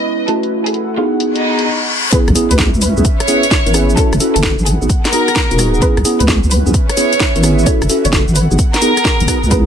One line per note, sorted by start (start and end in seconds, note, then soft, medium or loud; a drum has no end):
0.00 0.26 G#3 medium
0.00 0.26 B3 medium
0.00 0.26 C#4 medium
0.00 0.57 C#4 medium
0.00 0.26 E4 medium
0.00 0.27 E4 medium
0.00 0.57 B4 medium
0.00 0.22 D#5 medium
0.28 0.95 A3 medium
0.28 0.95 C#4 medium
0.28 0.95 E4 medium
0.28 0.97 E4 medium
0.28 0.95 F#4 medium
0.28 0.48 A4 medium
0.28 closed hi-hat medium
0.43 0.97 A4 medium
0.43 closed hi-hat soft
0.62 1.66 F#5 medium
0.66 0.83 G#4 medium
0.66 closed hi-hat medium
0.74 closed hi-hat soft
0.97 1.66 B3 medium
0.97 1.66 D#4 medium
0.97 1.17 F4 medium
0.97 1.66 F#4 medium
0.97 1.66 G#4 medium
1.20 closed hi-hat medium
1.20 reverse cymbal medium
1.35 1.66 D#4 medium
1.35 closed hi-hat medium
1.59 closed hi-hat medium
2.12 2.27 B3 medium
2.12 2.27 C#4 medium
2.12 4.27 C#4 medium
2.12 2.27 E4 medium
2.12 2.27 G#4 medium
2.12 2.32 B4 loud
2.12 kick loud
2.12 closed hi-hat medium
2.12 impact medium
2.12 shaker soft
2.27 2.35 C#2 loud
2.27 4.26 E5 medium
2.27 cross-stick medium
2.27 closed hi-hat soft
2.35 2.50 B3 loud
2.35 2.50 C#4 medium
2.35 2.50 E4 medium
2.35 2.50 G#4 loud
2.35 4.26 B4 medium
2.35 open hi-hat loud
2.35 shaker medium
2.51 2.70 C#2 medium
2.51 2.68 B4 medium
2.51 closed hi-hat medium
2.51 shaker soft
2.59 2.68 B3 medium
2.59 2.68 C#4 medium
2.59 2.68 E4 medium
2.59 2.68 G#4 medium
2.59 kick loud
2.59 snare loud
2.59 shaker soft
2.74 2.93 C#2 medium
2.74 shaker soft
2.82 3.02 B4 loud
2.82 open hi-hat loud
2.82 shaker medium
2.97 3.04 C#2 medium
2.97 3.02 B3 medium
2.97 3.02 C#4 medium
2.97 3.02 E4 medium
2.97 3.02 G#4 medium
2.97 shaker soft
3.05 kick loud
3.05 closed hi-hat medium
3.05 shaker soft
3.20 3.91 C#5 loud
3.20 cross-stick medium
3.20 closed hi-hat medium
3.28 3.43 B3 medium
3.28 3.43 C#4 medium
3.28 3.43 E4 medium
3.28 3.43 G#4 loud
3.28 open hi-hat loud
3.28 shaker medium
3.43 closed hi-hat medium
3.43 shaker soft
3.51 kick loud
3.51 snare loud
3.51 shaker soft
3.66 3.96 G#1 loud
3.66 3.73 B3 medium
3.66 3.73 C#4 medium
3.66 3.73 E4 medium
3.66 3.73 A#4 loud
3.66 closed hi-hat medium
3.66 shaker soft
3.74 3.95 B3 medium
3.74 3.95 C#4 medium
3.74 3.95 E4 medium
3.74 3.95 G#4 medium
3.74 cross-stick medium
3.74 open hi-hat medium
3.74 shaker medium
3.90 shaker soft
3.97 4.12 C#4 medium
3.97 4.66 E4 medium
3.97 4.12 E4 medium
3.97 4.12 F#4 medium
3.97 4.17 A4 loud
3.97 4.12 A4 medium
3.97 kick loud
3.97 closed hi-hat medium
3.97 shaker soft
4.12 4.19 F#1 loud
4.12 cross-stick medium
4.12 closed hi-hat soft
4.12 shaker soft
4.20 4.35 C#4 loud
4.20 4.35 E4 medium
4.20 4.35 F#4 medium
4.20 4.35 A4 loud
4.20 open hi-hat loud
4.20 shaker medium
4.31 6.57 F#5 medium
4.36 4.55 F#1 medium
4.36 4.53 A4 loud
4.36 closed hi-hat medium
4.36 shaker soft
4.43 4.53 C#4 medium
4.43 4.53 E4 medium
4.43 4.52 F#4 medium
4.43 4.53 A4 medium
4.43 kick loud
4.43 snare loud
4.43 shaker soft
4.59 4.78 G#1 medium
4.59 shaker soft
4.66 6.57 B3 medium
4.66 4.86 G#4 medium
4.66 open hi-hat medium
4.66 shaker medium
4.82 4.89 G#1 medium
4.82 4.86 B3 medium
4.82 4.86 D#4 medium
4.82 4.86 F#4 medium
4.82 4.86 G#4 medium
4.82 shaker soft
4.89 kick loud
4.89 closed hi-hat medium
4.89 shaker soft
4.97 6.57 G#4 medium
5.05 5.76 A#4 loud
5.05 snare medium
5.05 closed hi-hat medium
5.05 shaker soft
5.12 5.27 B3 medium
5.12 5.27 D#4 medium
5.12 5.27 F#4 medium
5.12 5.27 G#4 loud
5.12 open hi-hat loud
5.12 shaker medium
5.28 cross-stick medium
5.28 closed hi-hat medium
5.28 shaker soft
5.36 kick loud
5.36 snare loud
5.36 shaker soft
5.51 5.80 D#1 loud
5.51 5.57 B3 medium
5.51 5.57 D#4 medium
5.51 5.58 F#4 medium
5.51 5.58 A#4 loud
5.51 closed hi-hat medium
5.51 shaker soft
5.59 5.80 B3 medium
5.59 5.80 D#4 medium
5.59 5.80 F#4 medium
5.59 5.80 G#4 loud
5.59 cross-stick medium
5.59 open hi-hat medium
5.59 shaker medium
5.74 shaker soft
5.82 5.97 B3 medium
5.82 5.97 C#4 medium
5.82 7.96 C#4 medium
5.82 5.97 E4 medium
5.82 5.97 G#4 medium
5.82 6.02 B4 loud
5.82 kick loud
5.82 closed hi-hat medium
5.82 shaker soft
5.97 6.04 C#2 loud
5.97 cross-stick medium
5.97 closed hi-hat soft
6.05 6.20 B3 loud
6.05 6.20 C#4 medium
6.05 6.20 E4 medium
6.05 6.20 G#4 loud
6.05 7.96 B4 loud
6.05 open hi-hat loud
6.05 shaker medium
6.20 6.40 C#2 medium
6.20 6.37 B4 loud
6.20 closed hi-hat medium
6.20 shaker soft
6.28 6.37 B3 medium
6.28 6.37 C#4 medium
6.28 6.37 E4 medium
6.28 6.37 G#4 medium
6.28 kick loud
6.28 snare loud
6.28 shaker soft
6.43 6.63 C#2 medium
6.43 7.96 E5 medium
6.43 shaker soft
6.51 6.71 B4 medium
6.51 open hi-hat medium
6.51 shaker medium
6.66 6.73 C#2 medium
6.66 6.71 B3 medium
6.66 6.71 C#4 medium
6.66 6.71 E4 medium
6.66 6.71 G#4 medium
6.66 shaker soft
6.74 kick loud
6.74 closed hi-hat medium
6.74 shaker soft
6.89 7.60 C#5 loud
6.89 cross-stick medium
6.89 closed hi-hat medium
6.97 7.12 B3 medium
6.97 7.12 C#4 medium
6.97 7.12 E4 medium
6.97 7.12 G#4 loud
6.97 open hi-hat loud
6.97 shaker medium
7.13 closed hi-hat medium
7.13 shaker soft
7.20 kick loud
7.20 snare loud
7.20 shaker soft
7.36 7.65 G#1 loud
7.36 7.42 B3 medium
7.36 7.42 C#4 medium
7.36 7.42 E4 medium
7.36 7.42 A#4 loud
7.36 closed hi-hat medium
7.36 shaker soft
7.43 7.65 B3 medium
7.43 7.65 C#4 medium
7.43 7.65 E4 medium
7.43 7.65 G#4 loud
7.43 cross-stick medium
7.43 open hi-hat medium
7.43 shaker medium
7.59 shaker soft
7.66 7.81 C#4 medium
7.66 7.81 E4 medium
7.66 8.36 E4 medium
7.66 7.81 F#4 medium
7.66 7.81 A4 medium
7.66 7.86 C#5 loud
7.66 kick loud
7.66 closed hi-hat medium
7.66 shaker soft
7.82 7.89 F#1 loud
7.82 cross-stick medium
7.82 closed hi-hat soft
7.82 shaker soft
7.89 8.04 C#4 loud
7.89 8.04 E4 medium
7.89 8.04 F#4 medium
7.89 8.04 A4 loud
7.89 open hi-hat loud
7.89 shaker medium
7.98 9.66 F#5 medium
8.05 8.24 F#1 medium
8.05 8.22 C#5 medium
8.05 closed hi-hat medium
8.05 shaker soft
8.13 8.22 C#4 medium
8.13 8.22 E4 medium
8.13 8.22 F#4 medium
8.13 8.22 A4 medium
8.13 kick loud
8.13 snare loud
8.13 shaker soft
8.28 8.47 G#1 medium
8.28 shaker soft
8.36 9.66 B3 medium
8.36 8.56 B4 medium
8.36 open hi-hat medium
8.36 shaker medium
8.51 8.58 G#1 medium
8.51 8.56 B3 medium
8.51 8.56 D#4 medium
8.51 8.56 F#4 medium
8.51 9.66 G#4 medium
8.51 8.56 G#4 medium
8.51 shaker soft
8.59 kick loud
8.59 closed hi-hat medium
8.59 shaker soft
8.74 9.45 A#4 loud
8.74 snare medium
8.74 closed hi-hat medium
8.74 shaker soft
8.82 8.91 B3 loud
8.82 8.91 D#4 medium
8.82 8.91 F#4 medium
8.82 8.91 G#4 loud
8.82 open hi-hat loud
8.82 shaker medium
8.97 cross-stick medium
8.97 closed hi-hat medium
8.97 shaker soft
9.05 kick loud
9.05 snare loud
9.05 shaker soft
9.20 9.27 G#1 medium
9.20 closed hi-hat medium
9.20 shaker soft
9.28 9.37 B3 medium
9.28 9.37 D#4 medium
9.28 9.37 F#4 medium
9.28 9.37 B4 loud
9.28 kick medium
9.28 cross-stick medium
9.28 open hi-hat medium
9.28 shaker medium
9.43 9.63 C#2 medium
9.43 shaker soft
9.51 9.66 B3 medium
9.51 9.66 C#4 medium
9.51 9.66 E4 medium
9.51 9.66 G#4 medium
9.51 9.66 B4 loud
9.51 kick loud
9.51 closed hi-hat medium
9.51 shaker soft